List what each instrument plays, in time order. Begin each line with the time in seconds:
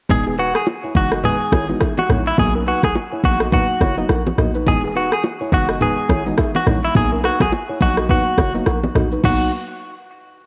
0.09 808-style bass E1, synth pluck E3 G#3 B3 D#4, clean electric guitar G#4, kick, low conga, shaker
0.27 nylon-string guitar B3 G#4
0.38 nylon-string guitar D#4 B4, clean electric guitar F#4, shaker
0.54 clean electric guitar G#4, cross-stick, shaker
0.66 high bongo, shaker
0.84 nylon-string guitar E4 C#5
0.95 808-style bass F#1, synth pluck E3 G#3 B3 D#4, clean electric guitar F#4, kick, shaker
1.12 nylon-string guitar F#4 D#5, cross-stick, shaker
1.23 synth pluck E3 G#3 B3 D#4, nylon-string guitar D#4 B4, clean electric guitar G#4, low conga, shaker
1.52 808-style bass G#1, nylon-string guitar E4 C#5, kick, cross-stick, low bongo, shaker
1.69 synth pluck E3 G#3 B3 D#4, nylon-string guitar F#4 D#5, shaker
1.81 nylon-string guitar G#4 E5, kick, cross-stick, high bongo, shaker
1.98 clean electric guitar F#4, low bongo
2.09 808-style bass A#1, synth pluck E3 G#3 B3 D#4, nylon-string guitar E4 C#5, cross-stick, low conga, shaker
2.26 clean electric guitar E4, shaker
2.38 808-style bass B1, synth pluck F#3 A#3 B3 D#4, clean electric guitar G#4, kick, low conga, shaker
2.55 nylon-string guitar C#4 A#4
2.66 nylon-string guitar D#4 B4, clean electric guitar F#4, shaker
2.83 808-style bass B1, clean electric guitar G#4, kick, cross-stick, shaker
2.95 high bongo, shaker
3.12 nylon-string guitar E4 C#5
3.23 808-style bass A#1, synth pluck F#3 A#3 B3 D#4, clean electric guitar F#4, kick, shaker
3.40 nylon-string guitar F#4 D#5, cross-stick, shaker
3.52 synth pluck F#3 A#3 B3 D#4, nylon-string guitar D#4 B4, clean electric guitar F#4, kick, low conga, shaker
3.81 808-style bass F#1, nylon-string guitar E4 C#5, kick, cross-stick, low bongo, shaker
3.97 synth pluck F#3 A#3 B3 D#4, nylon-string guitar F#4 D#5, shaker
4.09 808-style bass A#1, nylon-string guitar A#4 F#5, cross-stick, high bongo, shaker
4.26 low bongo
4.38 808-style bass A#1, synth pluck F#3 A#3 B3 D#4, nylon-string guitar F#4 D#5, cross-stick, low conga, shaker
4.54 nylon-string guitar D#4 B4, shaker
4.66 808-style bass E1, synth pluck E3 G#3 B3 D#4, clean electric guitar G#4, kick, low conga, shaker
4.84 nylon-string guitar B3 G#4
4.95 nylon-string guitar D#4 B4, clean electric guitar F#4, shaker
5.11 clean electric guitar G#4, cross-stick, shaker
5.23 high bongo, shaker
5.41 nylon-string guitar E4 C#5
5.52 808-style bass F#1, synth pluck E3 G#3 B3 D#4, clean electric guitar F#4, kick, shaker
5.69 nylon-string guitar F#4 D#5, cross-stick, shaker
5.80 synth pluck E3 G#3 B3 D#4, nylon-string guitar D#4 B4, clean electric guitar G#4, low conga, shaker
6.09 808-style bass G#1, nylon-string guitar E4 C#5, kick, cross-stick, low bongo, shaker
6.26 synth pluck E3 G#3 B3 D#4, nylon-string guitar F#4 D#5, shaker
6.38 nylon-string guitar G#4 E5, kick, cross-stick, high bongo, shaker
6.55 clean electric guitar F#4, low bongo
6.66 808-style bass A#1, synth pluck E3 G#3 B3 D#4, nylon-string guitar E4 C#5, cross-stick, low conga, shaker
6.83 clean electric guitar E4, shaker
6.95 808-style bass B1, synth pluck F#3 A#3 B3 D#4, clean electric guitar G#4, kick, low conga, shaker
7.12 nylon-string guitar C#4 A#4
7.23 nylon-string guitar D#4 B4, clean electric guitar F#4, cross-stick, shaker
7.40 808-style bass B1, clean electric guitar G#4, kick, cross-stick, low bongo, shaker
7.52 high bongo, shaker
7.69 nylon-string guitar E4 C#5
7.80 808-style bass A#1, synth pluck F#3 A#3 B3 D#4, clean electric guitar F#4, kick, shaker
7.97 nylon-string guitar F#4 D#5, cross-stick, shaker
8.09 synth pluck F#3 A#3 B3 D#4, nylon-string guitar D#4 B4, clean electric guitar F#4, kick, low conga, shaker
8.38 808-style bass F#1, nylon-string guitar E4 C#5, kick, cross-stick, low bongo, shaker
8.54 synth pluck F#3 A#3 B3 D#4, nylon-string guitar F#4 D#5, shaker
8.66 808-style bass A#1, nylon-string guitar A#4 F#5, cross-stick, high bongo, shaker
8.83 low bongo
8.95 808-style bass A#1, synth pluck F#3 A#3 B3 D#4, nylon-string guitar F#4 D#5, cross-stick, low bongo, low conga, shaker
9.11 nylon-string guitar D#4 B4, shaker
9.23 808-style bass B1, synth pluck F#3 A#3 B3 D#4, nylon-string guitar D#4, clean electric guitar F#4, kick, crash, low conga